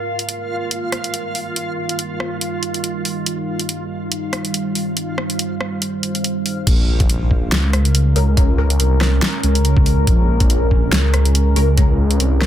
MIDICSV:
0, 0, Header, 1, 6, 480
1, 0, Start_track
1, 0, Tempo, 425532
1, 1763, Time_signature, 4, 2, 24, 8
1, 14061, End_track
2, 0, Start_track
2, 0, Title_t, "Synth texture"
2, 0, Program_c, 0, 99
2, 0, Note_on_c, 0, 65, 79
2, 0, Note_on_c, 0, 77, 84
2, 7534, Note_off_c, 0, 65, 0
2, 7534, Note_off_c, 0, 77, 0
2, 14061, End_track
3, 0, Start_track
3, 0, Title_t, "Ambient pad"
3, 0, Program_c, 1, 92
3, 0, Note_on_c, 1, 55, 83
3, 0, Note_on_c, 1, 63, 76
3, 0, Note_on_c, 1, 70, 91
3, 3638, Note_off_c, 1, 70, 0
3, 3684, Note_on_c, 1, 72, 92
3, 7478, Note_off_c, 1, 55, 0
3, 7478, Note_off_c, 1, 63, 0
3, 7485, Note_off_c, 1, 72, 0
3, 7523, Note_on_c, 1, 61, 84
3, 7523, Note_on_c, 1, 70, 99
3, 7524, Note_on_c, 1, 56, 93
3, 14061, Note_off_c, 1, 56, 0
3, 14061, Note_off_c, 1, 61, 0
3, 14061, Note_off_c, 1, 70, 0
3, 14061, End_track
4, 0, Start_track
4, 0, Title_t, "Synth stab"
4, 0, Program_c, 2, 62
4, 9202, Note_on_c, 2, 61, 73
4, 9203, Note_on_c, 2, 56, 82
4, 9203, Note_on_c, 2, 70, 87
4, 9337, Note_off_c, 2, 61, 0
4, 9337, Note_off_c, 2, 70, 0
4, 9338, Note_off_c, 2, 56, 0
4, 9443, Note_on_c, 2, 56, 77
4, 9443, Note_on_c, 2, 61, 72
4, 9443, Note_on_c, 2, 70, 88
4, 9578, Note_off_c, 2, 56, 0
4, 9578, Note_off_c, 2, 61, 0
4, 9578, Note_off_c, 2, 70, 0
4, 9682, Note_on_c, 2, 61, 73
4, 9683, Note_on_c, 2, 56, 75
4, 9683, Note_on_c, 2, 70, 85
4, 9817, Note_off_c, 2, 56, 0
4, 9817, Note_off_c, 2, 61, 0
4, 9817, Note_off_c, 2, 70, 0
4, 13042, Note_on_c, 2, 56, 80
4, 13042, Note_on_c, 2, 61, 75
4, 13042, Note_on_c, 2, 70, 87
4, 13177, Note_off_c, 2, 56, 0
4, 13177, Note_off_c, 2, 61, 0
4, 13177, Note_off_c, 2, 70, 0
4, 13283, Note_on_c, 2, 56, 79
4, 13283, Note_on_c, 2, 61, 70
4, 13283, Note_on_c, 2, 70, 83
4, 13418, Note_off_c, 2, 56, 0
4, 13418, Note_off_c, 2, 61, 0
4, 13418, Note_off_c, 2, 70, 0
4, 14061, End_track
5, 0, Start_track
5, 0, Title_t, "Detuned saw bass"
5, 0, Program_c, 3, 39
5, 7523, Note_on_c, 3, 34, 100
5, 8466, Note_off_c, 3, 34, 0
5, 8483, Note_on_c, 3, 37, 94
5, 9186, Note_off_c, 3, 37, 0
5, 9203, Note_on_c, 3, 37, 101
5, 9906, Note_off_c, 3, 37, 0
5, 9923, Note_on_c, 3, 36, 90
5, 10386, Note_off_c, 3, 36, 0
5, 10643, Note_on_c, 3, 37, 99
5, 11346, Note_off_c, 3, 37, 0
5, 11362, Note_on_c, 3, 34, 100
5, 12306, Note_off_c, 3, 34, 0
5, 12323, Note_on_c, 3, 37, 94
5, 13026, Note_off_c, 3, 37, 0
5, 13042, Note_on_c, 3, 37, 94
5, 13746, Note_off_c, 3, 37, 0
5, 13763, Note_on_c, 3, 36, 93
5, 14061, Note_off_c, 3, 36, 0
5, 14061, End_track
6, 0, Start_track
6, 0, Title_t, "Drums"
6, 215, Note_on_c, 9, 42, 44
6, 323, Note_off_c, 9, 42, 0
6, 323, Note_on_c, 9, 42, 71
6, 436, Note_off_c, 9, 42, 0
6, 802, Note_on_c, 9, 42, 69
6, 915, Note_off_c, 9, 42, 0
6, 1042, Note_on_c, 9, 37, 58
6, 1042, Note_on_c, 9, 42, 48
6, 1155, Note_off_c, 9, 37, 0
6, 1155, Note_off_c, 9, 42, 0
6, 1176, Note_on_c, 9, 42, 44
6, 1283, Note_off_c, 9, 42, 0
6, 1283, Note_on_c, 9, 42, 66
6, 1395, Note_off_c, 9, 42, 0
6, 1523, Note_on_c, 9, 46, 77
6, 1635, Note_off_c, 9, 46, 0
6, 1763, Note_on_c, 9, 42, 68
6, 1876, Note_off_c, 9, 42, 0
6, 2136, Note_on_c, 9, 42, 46
6, 2243, Note_off_c, 9, 42, 0
6, 2243, Note_on_c, 9, 42, 69
6, 2355, Note_off_c, 9, 42, 0
6, 2483, Note_on_c, 9, 37, 59
6, 2595, Note_off_c, 9, 37, 0
6, 2722, Note_on_c, 9, 42, 71
6, 2835, Note_off_c, 9, 42, 0
6, 2963, Note_on_c, 9, 42, 47
6, 3076, Note_off_c, 9, 42, 0
6, 3095, Note_on_c, 9, 42, 45
6, 3202, Note_off_c, 9, 42, 0
6, 3202, Note_on_c, 9, 42, 67
6, 3315, Note_off_c, 9, 42, 0
6, 3442, Note_on_c, 9, 46, 84
6, 3555, Note_off_c, 9, 46, 0
6, 3682, Note_on_c, 9, 42, 76
6, 3795, Note_off_c, 9, 42, 0
6, 4055, Note_on_c, 9, 42, 49
6, 4162, Note_off_c, 9, 42, 0
6, 4162, Note_on_c, 9, 42, 72
6, 4275, Note_off_c, 9, 42, 0
6, 4643, Note_on_c, 9, 42, 74
6, 4756, Note_off_c, 9, 42, 0
6, 4883, Note_on_c, 9, 37, 62
6, 4883, Note_on_c, 9, 42, 50
6, 4995, Note_off_c, 9, 37, 0
6, 4995, Note_off_c, 9, 42, 0
6, 5016, Note_on_c, 9, 42, 47
6, 5123, Note_off_c, 9, 42, 0
6, 5123, Note_on_c, 9, 42, 70
6, 5235, Note_off_c, 9, 42, 0
6, 5363, Note_on_c, 9, 46, 90
6, 5475, Note_off_c, 9, 46, 0
6, 5602, Note_on_c, 9, 42, 76
6, 5715, Note_off_c, 9, 42, 0
6, 5842, Note_on_c, 9, 37, 59
6, 5955, Note_off_c, 9, 37, 0
6, 5976, Note_on_c, 9, 42, 51
6, 6083, Note_off_c, 9, 42, 0
6, 6083, Note_on_c, 9, 42, 77
6, 6195, Note_off_c, 9, 42, 0
6, 6323, Note_on_c, 9, 37, 61
6, 6436, Note_off_c, 9, 37, 0
6, 6563, Note_on_c, 9, 42, 79
6, 6675, Note_off_c, 9, 42, 0
6, 6803, Note_on_c, 9, 42, 53
6, 6916, Note_off_c, 9, 42, 0
6, 6936, Note_on_c, 9, 42, 50
6, 7043, Note_off_c, 9, 42, 0
6, 7043, Note_on_c, 9, 42, 74
6, 7156, Note_off_c, 9, 42, 0
6, 7283, Note_on_c, 9, 46, 89
6, 7396, Note_off_c, 9, 46, 0
6, 7523, Note_on_c, 9, 36, 118
6, 7524, Note_on_c, 9, 42, 87
6, 7524, Note_on_c, 9, 49, 112
6, 7636, Note_off_c, 9, 36, 0
6, 7636, Note_off_c, 9, 42, 0
6, 7636, Note_off_c, 9, 49, 0
6, 7896, Note_on_c, 9, 36, 112
6, 7896, Note_on_c, 9, 42, 54
6, 8003, Note_off_c, 9, 42, 0
6, 8003, Note_on_c, 9, 42, 82
6, 8009, Note_off_c, 9, 36, 0
6, 8116, Note_off_c, 9, 42, 0
6, 8243, Note_on_c, 9, 36, 64
6, 8356, Note_off_c, 9, 36, 0
6, 8483, Note_on_c, 9, 38, 123
6, 8483, Note_on_c, 9, 42, 88
6, 8596, Note_off_c, 9, 38, 0
6, 8596, Note_off_c, 9, 42, 0
6, 8724, Note_on_c, 9, 37, 65
6, 8724, Note_on_c, 9, 42, 56
6, 8837, Note_off_c, 9, 37, 0
6, 8837, Note_off_c, 9, 42, 0
6, 8857, Note_on_c, 9, 42, 53
6, 8964, Note_off_c, 9, 42, 0
6, 8964, Note_on_c, 9, 42, 83
6, 9077, Note_off_c, 9, 42, 0
6, 9204, Note_on_c, 9, 46, 90
6, 9316, Note_off_c, 9, 46, 0
6, 9443, Note_on_c, 9, 36, 124
6, 9444, Note_on_c, 9, 42, 89
6, 9556, Note_off_c, 9, 36, 0
6, 9557, Note_off_c, 9, 42, 0
6, 9816, Note_on_c, 9, 42, 55
6, 9923, Note_off_c, 9, 42, 0
6, 9923, Note_on_c, 9, 42, 82
6, 10036, Note_off_c, 9, 42, 0
6, 10163, Note_on_c, 9, 37, 61
6, 10163, Note_on_c, 9, 38, 69
6, 10276, Note_off_c, 9, 37, 0
6, 10276, Note_off_c, 9, 38, 0
6, 10403, Note_on_c, 9, 38, 126
6, 10403, Note_on_c, 9, 42, 88
6, 10516, Note_off_c, 9, 38, 0
6, 10516, Note_off_c, 9, 42, 0
6, 10643, Note_on_c, 9, 42, 58
6, 10755, Note_off_c, 9, 42, 0
6, 10776, Note_on_c, 9, 42, 55
6, 10883, Note_off_c, 9, 42, 0
6, 10883, Note_on_c, 9, 42, 77
6, 10995, Note_off_c, 9, 42, 0
6, 11016, Note_on_c, 9, 36, 115
6, 11123, Note_on_c, 9, 46, 90
6, 11129, Note_off_c, 9, 36, 0
6, 11236, Note_off_c, 9, 46, 0
6, 11362, Note_on_c, 9, 36, 127
6, 11362, Note_on_c, 9, 42, 84
6, 11475, Note_off_c, 9, 36, 0
6, 11475, Note_off_c, 9, 42, 0
6, 11735, Note_on_c, 9, 36, 114
6, 11735, Note_on_c, 9, 42, 53
6, 11843, Note_off_c, 9, 42, 0
6, 11843, Note_on_c, 9, 42, 82
6, 11848, Note_off_c, 9, 36, 0
6, 11955, Note_off_c, 9, 42, 0
6, 12082, Note_on_c, 9, 36, 67
6, 12195, Note_off_c, 9, 36, 0
6, 12322, Note_on_c, 9, 38, 123
6, 12322, Note_on_c, 9, 42, 85
6, 12435, Note_off_c, 9, 38, 0
6, 12435, Note_off_c, 9, 42, 0
6, 12562, Note_on_c, 9, 37, 63
6, 12562, Note_on_c, 9, 42, 55
6, 12675, Note_off_c, 9, 37, 0
6, 12675, Note_off_c, 9, 42, 0
6, 12695, Note_on_c, 9, 42, 53
6, 12803, Note_off_c, 9, 42, 0
6, 12803, Note_on_c, 9, 42, 82
6, 12915, Note_off_c, 9, 42, 0
6, 13042, Note_on_c, 9, 46, 91
6, 13155, Note_off_c, 9, 46, 0
6, 13283, Note_on_c, 9, 36, 122
6, 13283, Note_on_c, 9, 42, 81
6, 13395, Note_off_c, 9, 36, 0
6, 13395, Note_off_c, 9, 42, 0
6, 13655, Note_on_c, 9, 42, 51
6, 13762, Note_off_c, 9, 42, 0
6, 13762, Note_on_c, 9, 42, 76
6, 13875, Note_off_c, 9, 42, 0
6, 14003, Note_on_c, 9, 37, 62
6, 14003, Note_on_c, 9, 38, 67
6, 14061, Note_off_c, 9, 37, 0
6, 14061, Note_off_c, 9, 38, 0
6, 14061, End_track
0, 0, End_of_file